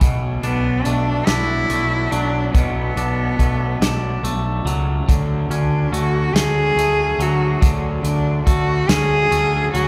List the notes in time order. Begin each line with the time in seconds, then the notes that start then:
0.01 B1 B2, kick, closed hi-hat
0.43 B1 B3 D4, closed hi-hat
0.85 B1 A3 D4, closed hi-hat
1.27 B1 D4 E4, snare, closed hi-hat
1.70 B1 A3, closed hi-hat
2.11 B1 F#3 D4, closed hi-hat
2.54 B1 B2 B3, kick, closed hi-hat
2.96 B1 D4, closed hi-hat
3.39 B1 A3, kick, closed hi-hat
3.81 B1 D4, snare, closed hi-hat
4.23 B1 A3, closed hi-hat
4.64 C#2 F#3, closed hi-hat
5.08 D2 D3, kick, closed hi-hat
5.49 D2 C#4 D4, closed hi-hat
5.92 D2 A3 F#4, closed hi-hat
6.33 D2 G#4, snare, closed hi-hat
6.76 D2 A3, closed hi-hat
7.18 D2 F#3 F#4, closed hi-hat
7.61 D2 D3, kick, closed hi-hat
8.03 D2 D4, closed hi-hat
8.46 D2 A3 F#4, kick, closed hi-hat
8.88 D2 C#4 G#4, snare, closed hi-hat
9.31 D2 A3, closed hi-hat
9.73 D2 F#3 F#4, closed hi-hat